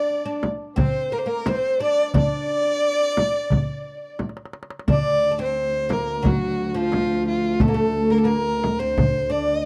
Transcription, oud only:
0.00 0.24 D4 medium
0.25 0.42 D4 medium
0.76 1.12 C4 medium
1.12 1.25 A#3 medium
1.26 1.47 A#3 medium
1.46 1.80 C4 medium
1.80 2.13 D4 medium
2.14 4.15 D4 medium
4.88 5.30 D4 medium
5.31 5.38 D4 medium
5.39 5.92 C4 medium
5.89 6.25 A#3 medium
6.23 6.74 F#3 medium
6.74 7.63 F3 medium
7.61 7.68 A3 medium
7.68 7.74 A#3 medium
7.74 8.10 A3 medium
8.10 8.24 A#3 medium
8.25 8.82 A#3 medium
8.80 9.29 C4 medium
9.30 9.65 D4 medium

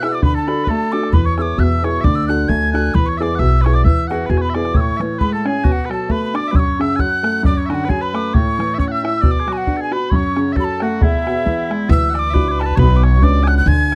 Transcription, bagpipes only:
0.01 0.08 E5 medium
0.08 0.12 F#5 medium
0.12 0.23 D5 medium
0.23 0.34 B4 medium
0.34 0.64 A4 medium
0.64 0.68 B4 medium
0.68 1.14 A4 medium
1.14 1.26 B4 medium
1.26 1.60 C#5 medium
1.60 1.84 E5 medium
1.84 2.01 C#5 medium
2.01 2.29 D5 medium
2.01 2.04 E5 medium
2.29 2.49 F#5 medium
2.49 2.95 G#5 medium
2.95 3.09 B4 medium
3.09 3.17 C#5 medium
3.17 3.35 D5 medium
3.17 3.21 E5 medium
3.35 3.61 E5 medium
3.35 3.39 F#5 medium
3.61 3.65 B4 medium
3.65 3.75 C#5 medium
3.75 3.84 D5 medium
3.84 4.07 E5 medium
4.07 4.26 F#4 medium
4.07 4.11 F#5 medium
4.26 4.37 G#4 medium
4.26 4.30 B4 medium
4.37 4.42 C#5 medium
4.42 4.50 B4 medium
4.50 4.54 E5 medium
4.54 4.74 D5 medium
4.74 4.97 C#5 medium
4.97 5.19 C#5 medium
4.97 5.00 E5 medium
5.19 5.33 B4 medium
5.33 5.46 A4 medium
5.46 5.64 G#4 medium
5.64 5.85 F#4 medium
5.85 5.90 B4 medium
5.90 6.11 A4 medium
6.11 6.35 B4 medium
6.35 6.48 D5 medium
6.48 6.56 B4 medium
6.48 6.51 E5 medium
6.56 6.81 C#5 medium
6.81 6.96 E5 medium
6.96 7.46 F#5 loud
6.96 7.00 G#5 loud
7.46 7.57 D5 medium
7.57 7.66 C#5 medium
7.66 7.85 F#4 medium
7.66 7.69 E5 medium
7.85 7.89 B4 medium
7.89 8.01 G#4 medium
8.01 8.34 B4 medium
8.34 8.74 C#5 medium
8.74 8.78 E5 medium
8.78 8.88 C#5 medium
8.88 9.02 E5 medium
8.88 8.92 F#5 medium
9.02 9.21 E5 medium
9.21 9.40 D5 medium
9.40 9.48 G#4 medium
9.48 9.77 F#4 medium
9.77 9.92 G#4 medium
9.77 9.81 A4 medium
9.92 10.11 B4 medium
10.11 10.52 C#5 medium
10.52 10.82 A4 medium
10.52 10.56 E5 medium
10.82 11.02 F#4 medium
11.02 11.90 E4 medium
11.90 12.10 E5 medium
12.10 12.30 D5 medium
12.10 12.14 F#5 medium
12.30 12.48 B4 medium
12.30 12.34 E5 medium
12.48 12.63 B4 medium
12.48 12.51 C#5 medium
12.63 12.64 A4 medium
12.63 12.76 B4 medium
12.76 13.04 B4 loud
12.76 12.79 C#5 loud
13.04 13.23 C#5 medium
13.23 13.44 D5 loud
13.44 13.48 G#5 loud
13.48 13.58 F#5 loud
13.58 13.67 F#5 medium
13.67 13.95 G#5 medium

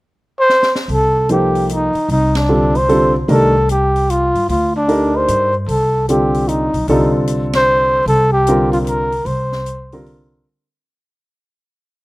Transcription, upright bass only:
0.88 1.91 C2 medium
1.94 muted upright bass stroke soft
2.09 3.25 C2 medium
3.28 4.30 C2 medium
4.34 4.47 G2 medium
4.49 5.24 D2 medium
5.28 5.65 G2 medium
5.67 6.69 C2 medium
6.73 6.87 B1 medium
6.88 8.03 C2 medium
8.06 9.22 C2 medium
9.25 10.41 C2 medium

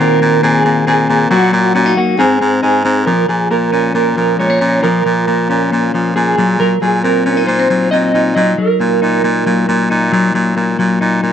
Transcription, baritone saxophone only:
0.00 0.18 A#2 loud
0.22 0.40 A#2 loud
0.43 0.61 A#2 loud
0.65 0.83 A#2 medium
0.87 1.05 A#2 medium
1.09 1.27 A#2 medium
1.30 1.49 A#2 loud
1.53 1.71 A#2 loud
1.75 1.93 A#2 loud
2.18 2.37 G#2 loud
2.41 2.59 G#2 medium
2.62 2.81 G#2 medium
2.84 3.03 G#2 loud
3.06 3.25 A#2 loud
3.28 3.47 A#2 medium
3.50 3.69 A#2 medium
3.73 3.91 A#2 medium
3.95 4.13 A#2 medium
4.17 4.35 A#2 medium
4.39 4.57 A#2 medium
4.61 4.79 A#2 loud
4.83 5.01 A#2 medium
5.05 5.23 A#2 medium
5.27 5.45 A#2 medium
5.50 5.68 A#2 loud
5.72 5.90 A#2 medium
5.94 6.12 A#2 medium
6.16 6.34 A#2 medium
6.37 6.73 A#2 medium
6.81 7.00 A#2 medium
7.04 7.22 A#2 medium
7.25 7.44 A#2 medium
7.47 7.66 A#2 loud
7.70 7.88 A#2 medium
7.92 8.10 A#2 medium
8.14 8.32 A#2 medium
8.36 8.54 A#2 loud
8.80 8.98 A#2 medium
9.02 9.20 A#2 medium
9.24 9.42 A#2 medium
9.46 9.64 A#2 medium
9.69 9.86 A#2 loud
9.91 10.09 A#2 loud
10.13 10.31 A#2 loud
10.35 10.53 A#2 loud
10.57 10.75 A#2 medium
10.79 10.97 A#2 medium
11.01 11.19 A#2 loud
11.23 11.33 A#2 medium

